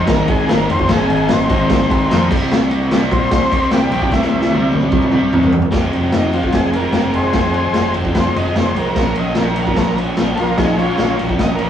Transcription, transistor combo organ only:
0.08 A#4
0.30 G#4
0.49 A#4
0.71 C5
0.92 G#4
1.33 C5
3.12 C5
3.34 C5
3.73 G4
4.13 E4
6.14 D#4
6.34 F4
6.54 G#4
6.75 A#4
7.15 G#4 C5
8.14 B4
8.19 C5
8.36 D#5
8.60 C5
8.79 A#4
8.99 A#4
9.19 D#5
9.39 A#4
9.59 A#4
9.76 A4 A#4
10.35 A4
10.39 F4 A#4
10.57 D#4 G#4
10.78 C#4 F4
11.40 D#5
11.55 A#4

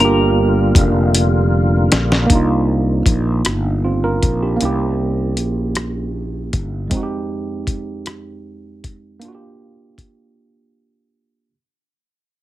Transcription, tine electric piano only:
Already playing: A#3
0.00 D4 F4
0.05 G4
2.27 A#3 D4
2.32 D#4 F4
3.84 C4 F4
4.04 F4 A#4
4.43 D4 G4
4.56 A#3 C#4
4.62 E4 G4
6.88 F2 G#3
6.92 C4 D#4
6.97 F#4
7.03 G4
9.20 A#3 D4
9.25 F4 F#4
9.35 G4

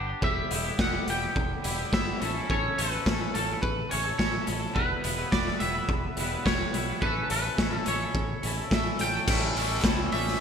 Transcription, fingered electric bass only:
Already playing: G1
0.23 E1
0.51 E1
0.79 E1
1.07 E1
1.36 E1
1.65 E1
1.93 G1
2.22 A1
2.50 A1
2.79 A1
3.06 A1
3.35 A1
3.63 A1
3.93 A1
4.20 A1
4.48 A1
4.76 E1
5.05 E1
5.33 E1
5.61 E1
5.89 E1
6.17 E1
6.46 E1
6.73 B1
7.02 A1
7.31 A1
7.59 A1
7.87 A1
8.15 A1
8.43 A1
8.72 A1
8.99 A1
9.28 A1
9.55 A1
9.84 C#2
10.12 A1

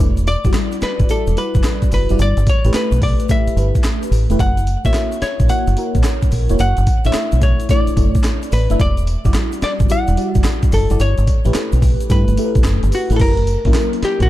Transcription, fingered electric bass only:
0.00 E1
0.45 F#1
0.82 muted fingered electric bass stroke
1.00 G1
1.27 E1
1.55 F#1
1.92 F#1
2.10 F#1
2.19 G1
2.37 G1
2.65 A1
2.74 muted fingered electric bass stroke
2.92 B1
3.47 muted fingered electric bass stroke
3.57 G1
4.11 A1
4.29 E1
4.40 F#1
4.85 A1
5.22 muted fingered electric bass stroke
5.40 A#1
5.49 muted fingered electric bass stroke
5.67 F#1
5.95 A#1
6.32 A#1
6.50 E1
6.60 F#1
6.78 F#1
7.05 A1
7.33 B1
7.88 muted fingered electric bass stroke
7.97 F#1
8.52 A1
8.71 F#1
8.80 E1
9.25 F#1
9.62 muted fingered electric bass stroke
9.80 G1
10.08 E1
10.35 F#1
10.73 F#1
10.90 F#1
11.00 G1
11.18 G1
11.46 A1
11.55 muted fingered electric bass stroke
11.73 B1
12.10 G2
12.28 G1
12.56 A1
12.65 F#1
12.83 G1
13.10 A1
13.20 F#1
13.65 A1
14.03 muted fingered electric bass stroke
14.20 A#1

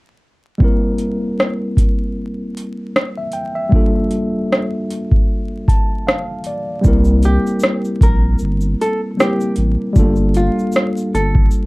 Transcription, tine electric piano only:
0.58 G3 A#3 C4
0.62 E4 A#4
3.18 E5
3.33 G5
3.55 E5
3.69 G3 A#3 D4
3.74 F4 A4
5.69 A5
6.07 F5
6.47 D5
6.81 G3 A#3 C4
6.86 E4 A#4
9.17 G3 A#3 C4 E4 A#4
9.93 G3 A3 D4
9.97 A#3 F4 A4

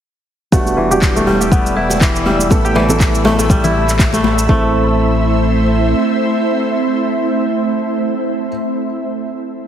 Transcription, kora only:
0.52 A3
0.77 E3
0.91 G4
1.16 A3
1.27 G3
1.41 G4
1.52 B3
1.76 E4
2.01 E3
2.26 G3
2.65 G4
2.76 E3
3.25 A3
3.39 A3
3.50 G3
3.64 E4
4.13 A3
4.49 A3

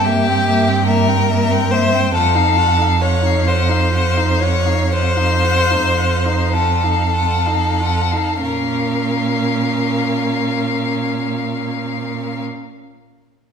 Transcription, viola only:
0.07 A#3
0.28 C4
0.48 A#3
0.68 C4
0.88 A#3
1.08 C4
1.29 A#3
1.49 C4
1.70 A#3
1.92 C4
2.14 F4
2.35 D#4
2.57 F4
2.78 D#4
3.00 F4
3.23 D#4
3.45 F4
3.69 D#4
3.93 F4
4.17 D#4
4.42 F4
4.66 D#4
4.91 F4
5.16 D#4
5.44 F4
5.71 D#4
5.97 F4
6.25 D#4
6.54 F4
6.84 D#4
7.15 F4
7.47 D#4
7.81 F4
8.13 D#4
8.42 C#4

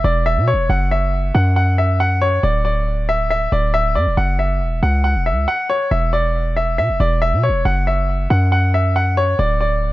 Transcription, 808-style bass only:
0.04 E1
0.37 B2
0.53 E1
0.69 F#1
1.35 F#2
2.43 D1
3.52 D1
3.96 F#2
4.07 D1
4.17 F#1
4.61 E1
4.83 C#2
5.15 E1
5.32 C#2
5.91 E1
6.78 B2
6.89 E1
7.00 E1
7.33 B2
7.49 E1
7.65 F#1
8.30 F#2
9.39 D1

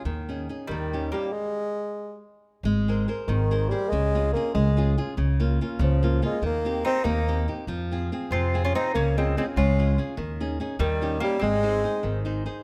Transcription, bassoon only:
0.68 D#3
1.13 G3
1.32 G#3
3.27 D#3
3.69 G3
3.86 G#3 A#3
4.33 A#3
4.54 G#3
5.83 F3
6.26 G#3
6.46 A#3
6.86 C4
7.04 A#3
8.32 C4
8.64 C#4
8.75 C4
8.94 A#3
9.18 G#3
9.37 G#3
9.58 C#4
10.81 D#3
11.24 G3
11.43 G#3

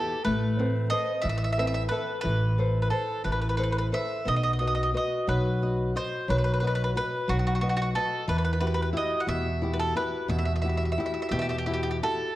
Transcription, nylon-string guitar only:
Already playing: B3 E4 G4
0.25 A3
0.59 C4 A4 B4
0.92 A4 B4 C5
1.23 E3
1.58 C4 A4 B4
1.91 A4 B4 E5
2.24 E3
2.58 A4 B4 C5
2.91 A4 B4 C5
3.24 E3
3.58 A4 B4 C5
3.92 A4 B4 C5
4.25 B3
4.60 F#4 B4 D#5
4.94 F#4 B4 D#5
5.27 F#3
5.62 F#4 D#5
5.95 F#4 D#5
6.28 F#3
6.63 F#4 B4 D#5
6.96 F#4 B4 D#5
7.28 F#3
7.61 F#4 B4 D#5
7.95 F#4 B4 D#5
8.28 E3
8.61 E4 F#4 G4
8.93 E4 F#4 G4
9.28 B2
9.62 E4 F#4 G4
9.96 E4 F#4 G4
10.28 B2
10.64 E4 F#4 G4
10.98 E4 F#4 G4
11.32 B2
11.67 E4 F#4 G4
12.03 E4 F#4 G4

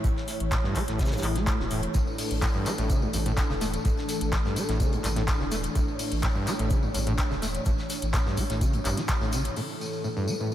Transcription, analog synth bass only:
0.04 A1
0.40 A1
0.88 A1
1.23 A1
1.59 E1
1.95 A1
2.31 A1
2.79 A1
3.14 A1
3.50 E1
3.85 A1
4.21 A1
4.69 A1
5.04 A1
5.40 E1
5.75 A1
6.12 A1
6.59 A1
6.95 A1
7.31 E1
7.66 A1
8.02 A1
8.50 A1
8.85 A1
9.21 A1

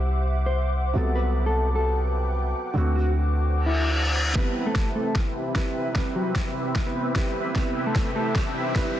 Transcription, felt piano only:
Already playing: C3 A3 E4 F#4
0.94 C3 F#3 B3
0.98 A4
2.73 D3 A3 C4
2.77 F#4
4.33 C3 G3 E4
4.37 B4
5.54 C3 G3 E4 B4
5.93 C3 G3 E4 B4
7.14 C3 G3 E4 B4
7.54 C3 G3 E4 B4
8.74 C3 G3 E4 B4

